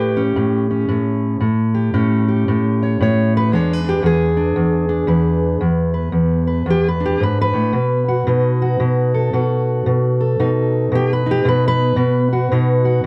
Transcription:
Already playing: A2 G4 B4
0.17 C#4
0.36 A2
0.71 C#4
0.89 A2
1.41 A2
1.75 G4
1.94 A2 C#4
2.28 G4
2.48 A2
2.83 C#5
3.01 A2 C#5
3.37 B4
3.52 E2 G#3 D4 C#5
3.73 B4
3.84 D4
3.89 G4
4.03 E2 G#4
4.37 D4
4.56 E2
4.89 D4
5.07 E2 B4
5.61 E2
5.94 B4
6.12 E2
6.47 B4
6.66 E2
6.70 G4
6.88 B4
7.00 D4
7.06 G4
7.20 G#2 B4
7.41 B4
7.53 A2
7.73 B2
8.09 F#4
8.27 B2 D#4
8.62 F#4
8.80 B2
9.14 A4
9.33 B2 F#4
9.86 B2
10.21 A4
10.40 B2 D#4
10.92 B2 G4
11.13 B4
11.26 D#4
11.31 G4
11.45 B2 B4
11.68 B4
11.96 B2
12.33 F#4
12.52 B2 D#4
12.85 F#4

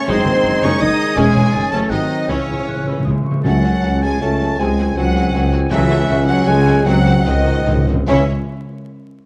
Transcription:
Already playing: C#4 A6
0.08 F#1 D#3 G#3 C4 D#4 C5 C6 G#6
0.26 F#1 D#3 G#3
0.44 F#1 F#3 C4
0.62 F#1 G#3 C#4 D#4 C#5 C#6
0.80 F#1 D#3 G#3 D#4 D#5 D#6
1.16 E1 E3 G#3 C#4 G#4 G#5
1.35 E1 C#3 E3
1.52 F#1 D#3 F#3 A3 C#4 A6
1.71 F#1 E3 A3 C#4 A4 A5
1.90 G#1 C3 D#3 F#3 C4 D#4 D#5 F#6
2.28 C#2 C#3 E3 C#4 C#5 E6
2.36 C#3
2.45 C#2 C#3
2.49 C#3 E3
2.60 C#3
2.67 C#2 C#3 G#3 F#6
2.76 C#3
2.84 C#2 C#3 E3 C#4 E6
2.92 C#3
3.00 C#3
3.05 C#2 C#3 E3 D#6
3.15 C#3
3.23 C#3 C#6
3.31 C#3
3.44 C#2 C#3 F#3 A3 C#4 F#4 A4 F#5 A5
3.64 F#3 C#4 F#4 A4
3.82 C#2 F#3 C#4 F#4 A4
4.02 F#3 G#3 C#4 F#4 A4 G#5
4.21 C#2 F#3 A3 C#4 F#4 A4 A5
4.41 F#3 C#4 F#4 A4
4.58 C#2 C3 F#3 G#3 C4 F#4 G#4 G#5
4.78 F#3 C4 F#4 G#4
4.96 C#2 F#3 C4 F#4 G#4 F#5 G#5
5.16 F#3 C4 F#4 G#4
5.33 C#2 F#3 C4 F#4 G#4
5.52 F#3 C4 F#4 G#4
5.70 C#2 C#3 E3 F#3 C#4 F#4 A4 E5 F#5
5.90 F#3 C#4 F#4 A4
6.09 C#2 F#3 C#4 F#4 A4
6.28 F#3 C#4 F#4 A4 F#5
6.47 C#2 F#3 G#3 C#4 F#4 A4 G#5
6.66 F#3 C#4 F#4 A4
6.85 C#2 C3 C#3 F#3 G#3 C4 D#4 F#4 F#5
7.01 C#3
7.06 C#3 G#3 C4 D#4 F#4
7.17 C#3
7.24 C#2 C#3 D#3 G#3 C4 D#4 F#4 D#5 F#5
7.34 C#3
7.42 C#3 G#3 C4 D#4 F#4
7.51 C#3
7.60 C#3
7.66 C#2 C#3 G#3 C4 D#4 F#4
7.76 C#3
7.85 C#3 G#3 C4 D#4 F#4
7.94 C#3
8.07 C#2 C#3 E3 G#3 C#4 E4 C#5 E5

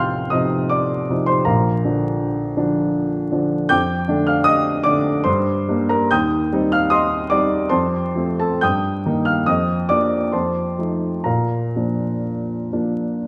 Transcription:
Already playing: A1 C3 F3 D#4 F5 G5 A5 C6 F6 G6 A6
0.30 C3 F3 D#4 D#5 D#6
0.69 D5 D6
1.09 C3 F3 D#4
1.26 C5 C6
1.45 A#1 A#4 F5 A#5
1.84 D3 F3 D4
2.57 D3 F3 D4
3.32 D3 F3 D4
3.69 F2 G5 D6 G6
4.08 D3 A3 D4
4.27 F5 F6
4.44 D#5 D#6
4.84 D3 A3 D4 D5 D6
5.24 G2 C5 C6
5.68 G3 A#3 D4
5.89 A#4 A#5
6.11 D#2 G5 D#6 G6
6.53 G3 C4 D#4
6.72 F5 F6
6.90 D#5 C6 D#6
7.30 G3 C4 D#4 D5 D6
7.69 F2 C5 A5 C6
8.15 F3 A3 C4
8.40 A4 A5
8.61 G2 G5 D#6 G6
9.06 D#3 A#3 D#4
9.25 F5 F6
9.46 F2 D#5 D#6
9.89 F3 A#3 D4 D5 D6
10.32 F2 C5 A5 C6
10.78 F3 A3 D#4
11.24 A#2 A#4 F5 A#5
11.76 F3 A#3 D4
12.72 F3 A#3 D4

